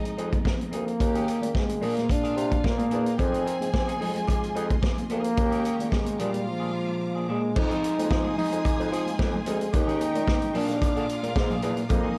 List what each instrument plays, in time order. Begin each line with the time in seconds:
Already playing: tine electric piano F3 C4 D#4 G4 G#4, trombone G#3, violin section D#4 D#5
0.04 muted clean electric guitar stroke, closed hi-hat, muted conga
0.17 bassoon F2, tine electric piano F3 C4 G#4, clean electric guitar C4 D#4 G#4, closed hi-hat
0.32 muted clean electric guitar stroke, kick, closed hi-hat, high conga
0.45 muted clean electric guitar stroke, kick, snare
0.59 muted clean electric guitar stroke, closed hi-hat, high conga
0.71 bassoon D2, clean electric guitar C4 D#4 G#4, closed hi-hat
0.76 trombone A#3
0.87 muted clean electric guitar stroke, closed hi-hat
1.00 bassoon D#2, tine electric piano D#3 A#3 C#4 G#4, violin section G4 G5, muted clean electric guitar stroke, kick, closed hi-hat, low conga
1.15 clean electric guitar C#4 D#4 G#4, closed hi-hat, muted conga
1.27 clean electric guitar C#4 D#4 G#4, closed hi-hat
1.41 bassoon A#2, tine electric piano D#3 A#3 C#4 G#4, muted clean electric guitar stroke, closed hi-hat, high conga
1.55 trombone G#3, muted clean electric guitar stroke, kick, snare, muted conga
1.69 muted clean electric guitar stroke, closed hi-hat, muted conga, high conga
1.81 tine electric piano A#2 A#3 D4 G#4, bassoon A#2, clean electric guitar A#3 D4 G#4, trombone A#3, violin section F4 F5, open hi-hat, low conga
1.97 muted clean electric guitar stroke, snare, closed hi-hat, high conga
2.09 trombone D4, muted clean electric guitar stroke, kick, closed hi-hat, muted conga
2.23 clean electric guitar A#3 D4 G#4, closed hi-hat, muted conga
2.37 bassoon C3, muted clean electric guitar stroke, closed hi-hat
2.51 muted clean electric guitar stroke, kick, closed hi-hat, high conga
2.64 bassoon A#2, trombone A#3, muted clean electric guitar stroke, kick, snare, muted conga
2.78 clean electric guitar A#3 D4 G#4, closed hi-hat, high conga
2.90 bassoon E2, tine electric piano A#2 A#3 D4, clean electric guitar A#3 D4 G#4, violin section D4 D5, closed hi-hat
2.99 violin section D#4 D#5
3.05 violin section F4 F5, muted clean electric guitar stroke, closed hi-hat
3.13 violin section G4 G5
3.17 bassoon F2, tine electric piano F3 C4 D#4 G#4, trombone C4, string section F4 D#5 G#5 C6, violin section G#4 G#5, muted clean electric guitar stroke, kick, closed hi-hat, cowbell, low conga
3.32 clean electric guitar C4 D#4 G#4, closed hi-hat, muted conga
3.45 clean electric guitar C4 D#4 A#4, closed hi-hat
3.60 bassoon G#2, tine electric piano F3 C4 D#4 G#4, muted clean electric guitar stroke, closed hi-hat, high conga
3.73 trombone C4, muted clean electric guitar stroke, kick, snare, cowbell, muted conga
3.87 clean electric guitar C4 D#4 G#4, closed hi-hat, muted conga, high conga
3.99 bassoon F2, trombone G#3, clean electric guitar C4 D#4 G#4, open hi-hat, low conga
4.15 muted clean electric guitar stroke, closed hi-hat, high conga
4.27 kick, closed hi-hat, cowbell
4.42 muted clean electric guitar stroke, closed hi-hat, muted conga
4.55 bassoon F2, tine electric piano F3 C4 D#4 G4, clean electric guitar C4 D#4 G#4, closed hi-hat
4.63 tine electric piano G#4
4.70 muted clean electric guitar stroke, kick, closed hi-hat, high conga
4.82 muted clean electric guitar stroke, kick, snare, cowbell, muted conga
4.97 muted clean electric guitar stroke, closed hi-hat, muted conga, high conga
5.10 bassoon D2, trombone A#3, clean electric guitar C4 D#4 G#4, closed hi-hat
5.24 muted clean electric guitar stroke, closed hi-hat
5.37 bassoon D#2, tine electric piano D#3 A#3 C#4, string section G#3 A#5 C#6, violin section G4 G5, muted clean electric guitar stroke, kick, closed hi-hat, cowbell, low conga
5.51 clean electric guitar A#3 C#4 G#4, closed hi-hat
5.64 clean electric guitar A#3 C#4 G#4, closed hi-hat
5.78 bassoon A#2, tine electric piano D#3 A#3 C#4 G#4, muted clean electric guitar stroke, closed hi-hat, high conga
5.92 trombone G#3, muted clean electric guitar stroke, kick, snare, cowbell, muted conga
6.06 muted clean electric guitar stroke, closed hi-hat, muted conga, high conga
6.19 tine electric piano A#2 A#3 D4 G#4, bassoon A#2, trombone G3, clean electric guitar A#3 D4 G#4, violin section F4 F5, string section F5 D6, closed hi-hat, low conga
6.33 muted clean electric guitar stroke, closed hi-hat, high conga
6.46 muted clean electric guitar stroke
6.50 trombone F3
6.60 clean electric guitar A#3 D4 G#4
6.74 muted clean electric guitar stroke
6.88 muted clean electric guitar stroke
7.00 muted clean electric guitar stroke
7.15 clean electric guitar A#3 D4 G#4
7.28 tine electric piano A#2 A#3 D4 G#4, trombone G#3, clean electric guitar A#3 D4 G#4
7.43 muted clean electric guitar stroke
7.55 bassoon F2, tine electric piano F3 C4 D#4 G#4, string section G#3 F5 C6 D#6, trombone D#4, violin section G#4 G#5, muted clean electric guitar stroke, kick, crash, cowbell, muted conga, low conga
7.70 tine electric piano F3 C4 D#4 G#4, clean electric guitar C4 D#4 G#4, closed hi-hat, muted conga
7.83 clean electric guitar C4 D#4 A#4, closed hi-hat
7.97 bassoon F2, muted clean electric guitar stroke, closed hi-hat, high conga
8.10 bassoon F3, muted clean electric guitar stroke, kick, snare, cowbell
8.24 clean electric guitar C4 D#4 G#4, muted conga, high conga
8.37 tine electric piano F3 C4 D#4 G#4, clean electric guitar C4 D#4 G#4, trombone D#4, open hi-hat, low conga
8.51 bassoon F2, muted clean electric guitar stroke, closed hi-hat
8.65 kick, closed hi-hat, cowbell
8.79 bassoon F2, muted clean electric guitar stroke, closed hi-hat, muted conga
8.91 bassoon F3, clean electric guitar C4 D#4 G#4, closed hi-hat
9.06 muted clean electric guitar stroke, closed hi-hat, high conga
9.19 bassoon F2, muted clean electric guitar stroke, kick, snare, cowbell, muted conga
9.34 muted clean electric guitar stroke, muted conga, high conga, low conga
9.46 bassoon D2, trombone G#3, clean electric guitar C4 D#4 G#4, closed hi-hat
9.60 muted clean electric guitar stroke, closed hi-hat
9.73 bassoon D#2, tine electric piano D#3 A#3 C#4 G#4, trombone D#4, violin section G4 G5, string section D#5 A#5 C#6, muted clean electric guitar stroke, kick, closed hi-hat, cowbell, muted conga, low conga
9.87 tine electric piano D#3 A#3 C#4 G#4, clean electric guitar A#3 C#4 G#4, closed hi-hat
10.00 clean electric guitar A#3 C#4 G#4, closed hi-hat
10.14 bassoon A#2, muted clean electric guitar stroke, closed hi-hat, high conga
10.27 kick, snare, cowbell, muted conga
10.42 closed hi-hat, high conga
10.53 bassoon A#2, tine electric piano A#2 A#3 C4 G#4, clean electric guitar A#3 D4 G#4, violin section F4 F5, string section G#4 F5 A#5 D6, open hi-hat, low conga
10.58 trombone D4, tine electric piano D4
10.69 muted clean electric guitar stroke, snare, closed hi-hat
10.82 muted clean electric guitar stroke, kick, closed hi-hat, cowbell
10.96 bassoon D3, clean electric guitar A#3 D4 G#4, closed hi-hat
11.09 muted clean electric guitar stroke, closed hi-hat
11.23 bassoon A#2, muted clean electric guitar stroke, closed hi-hat, high conga
11.36 bassoon G#2, tine electric piano A#2 A#3 D4 G#4, muted clean electric guitar stroke, kick, snare, cowbell
11.50 clean electric guitar A#3 D4 G#4, closed hi-hat, muted conga, high conga, low conga
11.62 bassoon E2, clean electric guitar A#3 D4 G#4, closed hi-hat
11.77 muted clean electric guitar stroke, closed hi-hat
11.89 bassoon F2, tine electric piano F3 C4 D#4 G#4, string section G#3 C6 D#6, trombone A#3, violin section D#4 D#5, muted clean electric guitar stroke, kick, closed hi-hat, cowbell, muted conga, low conga
12.04 tine electric piano F3 C4 D#4 G#4, clean electric guitar C4 D#4 G#4